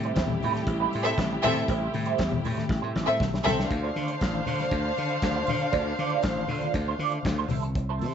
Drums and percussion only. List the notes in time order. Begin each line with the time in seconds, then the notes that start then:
0.03 closed hi-hat
0.16 kick, snare, clap, closed hi-hat, muted conga
0.28 high conga, low conga
0.40 open hi-hat, muted conga, low conga
0.54 snare, closed hi-hat, high conga
0.67 kick, closed hi-hat
0.92 open hi-hat, muted conga
1.05 closed hi-hat
1.18 kick, snare, clap, closed hi-hat, high conga
1.42 open hi-hat, muted conga, high conga, low conga
1.56 closed hi-hat
1.68 kick, closed hi-hat
1.94 open hi-hat, muted conga, high conga
2.06 closed hi-hat
2.18 kick, snare, clap, closed hi-hat
2.32 high conga, low conga
2.44 open hi-hat, muted conga, low conga
2.57 snare, closed hi-hat, high conga
2.69 kick, snare
2.96 snare, muted conga, high conga
3.20 kick, snare, muted conga, high conga
3.34 snare
3.46 snare, muted conga, high conga, low conga
3.59 snare
3.71 kick, closed hi-hat, muted conga
3.96 open hi-hat, high conga
4.08 closed hi-hat
4.21 kick, snare, clap, closed hi-hat
4.34 high conga
4.46 open hi-hat, muted conga, low conga
4.59 snare, closed hi-hat, high conga
4.71 kick, closed hi-hat
4.97 open hi-hat, high conga
5.09 closed hi-hat
5.22 kick, snare, clap, closed hi-hat, muted conga, high conga
5.46 open hi-hat, high conga, low conga
5.60 closed hi-hat
5.73 kick, closed hi-hat, muted conga
5.98 open hi-hat, high conga
6.10 closed hi-hat
6.22 kick, snare, clap, closed hi-hat
6.36 high conga
6.47 open hi-hat, muted conga, low conga
6.61 closed hi-hat, high conga
6.74 kick, closed hi-hat
6.98 open hi-hat, high conga
7.12 closed hi-hat
7.23 kick, snare, clap, closed hi-hat, muted conga, high conga
7.49 open hi-hat, muted conga, high conga, low conga
7.63 closed hi-hat
7.75 kick, closed hi-hat
7.99 open hi-hat, muted conga, high conga